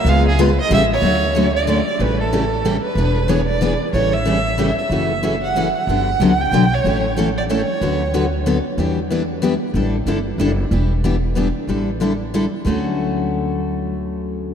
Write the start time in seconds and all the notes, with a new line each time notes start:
Already playing: E5
0.05 C#2 C#3 G#3 B3 F4 G#4 F5
0.28 G#4
0.39 C#3 G#3 B3 F4 G#4 B4
0.61 D#5
0.70 A1 C#3 E3 G3 A3 C#4 E4 G4 A4 E5
0.93 C#5
1.02 D2 D3 F#3 A3 C#4 F#4 A4
1.36 D3 F#3 A3 C#4 F#4 A4
1.56 D5
1.67 D3 F#3 A3 C#4 F#4 A4
1.99 A1 C#3 E3 G3 A3 C#4 E4 G4 A4 B4
2.20 A4
2.33 C#3 E3 G3 A3 C#4 E4 G4 A4
2.65 C#3 E3 G3 A3 C#4 E4 G4 A4
2.84 B4
2.95 E1 E3 B3 D4 G#4 B4
3.29 E3 B3 D4 G#4 B4 C#5
3.47 D5
3.62 E3 B3 D4 G#4 B4
3.93 A1 C#3 E3 G3 A3 C#4 E4 G4 A4 C#5
4.13 E5
4.25 C#3 E3 G3 A3 C#4 E4 G4 A4
4.58 C#3 E3 G3 A3 C#4 E4 G4 A4
4.78 E5
4.90 F#1 C#3 E3 F#3 A3 C#4 E4 F#4 A4
5.23 C#3 E3 F#3 A3 C#4 E4 F#4 A4
5.44 F#5
5.55 C#3 E3 F#3 A3 C#4 E4 F#4 A4
5.77 F#5
5.87 G1 D3 F#3 B3 D4 G4
6.20 C#2 D3 F#3 B3 D4 G4
6.41 G5
6.51 B1 D3 F#3 B3 D4 G4
6.74 C#5
6.84 A1 E3 A3 C#4 E4 A4
7.17 E3 A3 C#4 E4 A4
7.38 D5
7.50 E3 A3 C#4 E4 A4 C#5
7.81 D2 D3 F#3 B3 F#4 A4 B4
8.14 D3 F#3 B3 F#4 A4 B4
8.46 D3 F#3 B3 F#4 A4 B4
8.77 E2 E3 G3 B3 D4 E4 G4 B4
9.11 E3 G3 B3 D4 E4 G4 B4
9.43 E3 G3 B3 D4 E4 G4 B4
9.74 A1 D3 G3 D4 E4 A4
10.06 G1 D3 G3 D4 E4 A4
10.38 F#1 D3 G3 D4 E4 A4
10.71 E1 E3 G3 B3 D4 E4 G4 B4
11.04 E3 G3 B3 D4 E4 G4 B4
11.36 E3 G3 B3 D4 E4 G4 B4
11.67 A1 D3 G3 D4 E4 A4
12.02 D3 G3 D4 E4 A4
12.34 D3 G3 D4 E4 A4
12.65 D2 D3 F#3 A3 C#4 F#4 A4